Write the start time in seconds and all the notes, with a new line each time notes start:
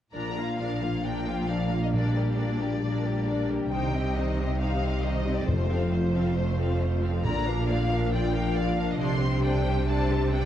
0.13 A#1 A#2 F3 D4 A#4 D5 A#5
0.36 A#3 F4 F5
0.59 F3 D4 A#4 D5 F5
0.81 A#3 F4 F5
1.03 F3 D4 A#4 D5 G5
1.26 A#3 F4 F5
1.48 F3 D4 A#4 D5 F5
1.72 A#3 F4 F5
1.83 D#5
1.93 A#2 G3 A#3 D4 A#4 D5
2.16 G3 A#3 G4 A#4
2.37 A#3 D4 A#4 D5
2.60 G3 A#3 G4 A#4
2.83 A#2 A#3 D4 A#4 D5
3.05 G3 A#3 D4 G4 A#4
3.27 A#3 D4 A#4 D5
3.50 G3 A#3 G4 A#4
3.71 C2 C3 D#3 D#4 C5 G5
3.93 G3 C4 G4 D#5
4.15 D#3 D#4 C5 D#5
4.38 G3 C4 G4 D#5
4.60 D#3 G3 D#4 C5 F5
4.83 G3 C4 G4 D#5
5.04 D#3 D#4 C5 D#5
5.26 G3 C4 G4 D#5
5.37 D5
5.47 F1 F2 F3 A3 F4 C5
5.71 F3 C4 A4 F5
5.92 A3 F4 C5
6.14 F3 C4 A4 F5
6.36 A3 C4 F4 C5
6.58 F3 C4 A4 F5
6.81 A3 F4 C5
7.02 F3 C4 A4 F5
7.24 A#1 A#2 D3 D4 F4 D5 A#5
7.46 F3 D4 A#4 F5
7.69 D3 F4 D5 F5
7.90 F3 D4 A#4 F5
8.12 D3 F3 F4 D5 G5
8.34 F3 D4 A#4 F5
8.56 D3 F4 D5 F5
8.77 F3 D4 A#4 F5
8.90 D#5
8.99 C2 C3 D3 D4 G4 C5 D5 C6
9.21 G3 C4 G4 C5
9.43 D3 D4 C5 D5 G5
9.66 G3 C4 G4 C5
9.88 D3 G3 D4 C5 D5 A5
10.10 G3 C4 G4 C5
10.32 D3 D4 C5 D5 G5